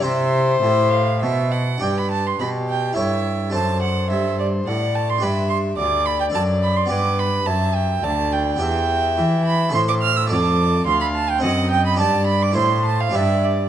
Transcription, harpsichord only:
X:1
M:3/4
L:1/8
Q:1/4=106
K:C
V:1 name="Harpsichord"
[EGc]6 | [K:G] [DGd]4 [EA^c]2 | [DAc]6 | [DGB]4 [DAd]2 |
[B,Gd]6 | [K:Am] [B,Ge]4 [A,Ae]2 | [A,Ad]4 [CA^d]2 | [DGd]2 [A,Ec]2 [DGB]2 |]
V:2 name="Harpsichord" clef=bass
C,2 A,,2 B,,2 | [K:G] G,,2 B,,2 G,,2 | F,,2 G,,2 A,,2 | G,,2 D,,2 F,,2 |
G,,2 F,,2 D,,2 | [K:Am] E,,2 E,2 A,,2 | F,,2 D,,2 ^F,,2 | G,,2 A,,2 G,,2 |]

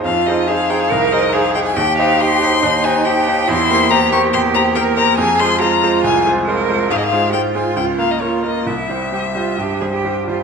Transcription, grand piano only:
X:1
M:4/4
L:1/8
Q:1/4=140
K:Cm
V:1 name="Grand piano"
F,, [EAc] [EAc] [EAc] C,, [EAc] [EAc] [EAc] | E,, [EGc] [EGc] [EGc] E,, [EGc] [EGc] [EGc] | [K:Fm] =E,, [B,Gc] [B,Gc] [B,Gc] E,, [B,Gc] [B,Gc] [B,Gc] | F,, [A,Fc] [A,Fc] [A,Fc] C,, [A,Fc] [A,Fc] [A,Fc] |
A,, [A,Fc] [A,Fc] [A,Fc] D,, [B,FB] [B,FB] [B,FB] | C,, [G,Gc] [G,Gc] [G,Gc] G,, [G,Gc] [G,Gc] [G,Gc] |]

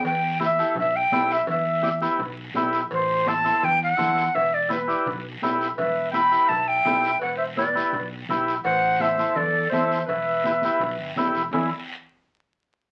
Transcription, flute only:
X:1
M:4/4
L:1/8
Q:1/4=167
K:Em
V:1 name="Flute"
g2 e2 e g2 e | e3 z4 z | c2 a2 g f3 | e d B3 z3 |
e2 b2 a g3 | f e d3 z3 | f2 e2 d2 e2 | e6 z2 |
z8 |]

